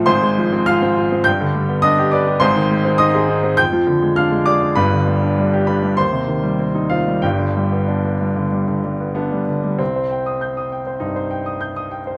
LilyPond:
<<
  \new Staff \with { instrumentName = "Grand piano" } { \time 4/4 \key c \minor \tempo 4 = 100 << { c'''4 f'''4 g'''4 ees'''8 d'''8 | c'''4 ees'''4 g'''4 f'''8 d'''8 | b''4. b''8 c'''4. f''8 | g''2. b4 |
c'2 ees'2 | } \\ { c''4 f''4 g''4 ees''8 d''8 | c''4 ees''4 g''4 f''8 d''8 | b'4. b'8 c''4. f'8 | g'2.~ g'8 r8 |
r1 | } >> }
  \new Staff \with { instrumentName = "Grand piano" } { \time 4/4 \key c \minor <aes,, aes,>16 aes16 f16 c'16 f'16 c'16 f'16 c'16 g,16 d16 g16 b16 d'16 g'16 b'16 g'16 | <aes,, aes,>16 ees16 aes16 c'16 ees'16 aes'16 ees'16 c'16 f,16 f16 d16 aes16 d'16 aes16 aes'16 d'16 | <g,, g,>16 d16 g16 d'16 g16 g'16 d'16 g16 ees,16 c16 ees16 g16 c'16 ees'16 c'16 g16 | <g,, g,>16 d16 g16 b16 d'16 b16 g16 d16 g16 d16 g16 b16 d'16 g16 d16 g16 |
c,16 c''16 g''16 ees'''16 g'''16 ees'''16 g''16 c''16 g,16 c''16 g''16 ees'''16 g'''16 ees'''16 g''16 c''16 | }
>>